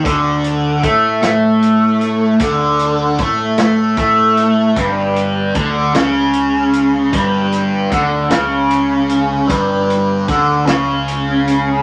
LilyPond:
<<
  \new Staff \with { instrumentName = "Distorted electric guitar" } { \clef bass \time 6/8 \key g \lydian \tempo 4. = 51 d4 a8 a4. | d4 a8 a8 a4 | g,4 d8 cis4. | g,4 d8 cis4. |
g,4 d8 cis4. | }
  \new Staff \with { instrumentName = "Picked electric bass" } { \clef bass \time 6/8 \key g \lydian d,4 a,8 a,4. | d,4 a,8 a,8 a,4 | g,,4 d,8 cis,4. | g,,4 d,8 cis,4. |
g,,4 d,8 cis,4. | }
  \new DrumStaff \with { instrumentName = "Drums" } \drummode { \time 6/8 <hh bd>8 hh8 <hh bd>8 <hh sn>8 hh8 hh8 | <hh bd>8 hh8 <hh bd>8 <hh sn>8 <hh bd>8 hh8 | <hh bd>8 hh8 <hh bd>8 <hh sn>8 hh8 hh8 | <hh bd>8 hh8 <hh bd>8 <hh sn>8 hh8 hh8 |
<hh bd>8 hh8 <hh bd>8 <hh sn>8 hh8 hh8 | }
>>